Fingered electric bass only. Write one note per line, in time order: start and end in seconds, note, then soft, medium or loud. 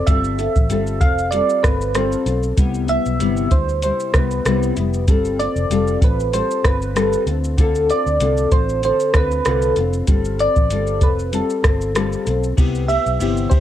0.08 0.47 G1 loud
0.56 0.67 A1 medium
0.69 1.01 G1 medium
1.01 1.40 F1 medium
1.64 2.14 G1 loud
2.26 2.51 B1 loud
2.58 2.96 C2 loud
3.06 3.17 B1 medium
3.21 3.46 G1 medium
3.51 3.90 D2 medium
4.14 4.39 C2 loud
4.45 4.70 C2 medium
4.77 5.08 F1 medium
5.08 5.47 G1 loud
5.56 5.67 F1 medium
5.70 5.95 F1 loud
6.02 6.41 A1 medium
6.65 7.15 G1 loud
7.27 7.90 D2 loud
8.06 8.18 D2 medium
8.20 8.45 C2 loud
8.51 8.90 A1 medium
9.14 9.39 D2 loud
9.46 9.71 C2 loud
9.77 10.02 F1 medium
10.07 10.46 G1 loud
10.56 10.68 A1 medium
10.71 11.02 G1 medium
11.02 11.40 F1 medium
11.64 12.14 G1 loud
12.27 12.52 B1 medium
12.58 12.97 C2 loud
13.06 13.18 B1 medium
13.20 13.45 G1 medium
13.52 13.60 D2 medium